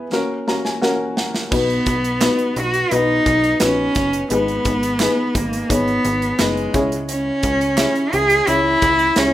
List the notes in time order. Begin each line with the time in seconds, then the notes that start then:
Already playing: E3 B3 E4 G#4 B4
0.12 A#3 C#4 F#4 A#4, snare
0.47 A#3 C#4 F#4 A#4 A#5, snare
0.65 G#5, snare
0.81 A#3 C#4 F#4 A#4 F#5, snare
1.17 F#5, snare
1.34 snare
1.51 B1 B2 B3 D#4 F#4 B4, kick, crash
1.70 closed hi-hat
1.86 B1, kick, closed hi-hat
2.04 closed hi-hat
2.21 B3 D#4 F#4 B4, snare, clap, closed hi-hat
2.39 closed hi-hat
2.56 B1 F#4, closed hi-hat
2.74 closed hi-hat
2.91 B1 B3 D#4 F#4 B4, closed hi-hat
3.26 B1, kick, closed hi-hat
3.44 closed hi-hat
3.60 A#1 B3 C#4 D#4 F#4 B4, snare, clap, closed hi-hat
3.95 F#1, kick, snare, closed hi-hat
4.13 closed hi-hat
4.30 G#1 G#2 B3 D#4 G#4 B4, closed hi-hat
4.48 closed hi-hat
4.65 G#1, kick, closed hi-hat
4.83 closed hi-hat
5.00 B3 D#4 G#4 B4, snare, clap, closed hi-hat
5.35 G#1 A#3, kick, closed hi-hat
5.53 closed hi-hat
5.69 G#1 B3 D#4 G#4 C#5, kick, closed hi-hat
5.88 closed hi-hat
6.05 G#1, closed hi-hat
6.22 closed hi-hat
6.38 F#1 G#3 B3 D#4 G#4 B4, snare, clap, closed hi-hat
6.57 closed hi-hat
6.73 C#2 C#3 C#4 E4 G#4 C#5, kick, closed hi-hat
6.92 closed hi-hat
7.09 C#4, closed hi-hat
7.43 C#2, kick, closed hi-hat
7.61 closed hi-hat
7.77 C#4 E4 G#4 E5, snare, clap, closed hi-hat
7.95 closed hi-hat
8.13 C#2 G#4, closed hi-hat
8.30 closed hi-hat
8.47 C#2 C#4 E4 G#4 C#5, closed hi-hat
8.82 C#2, kick, closed hi-hat
8.99 closed hi-hat
9.16 C#2 C#4 E4 G#4 C#5, snare, clap, closed hi-hat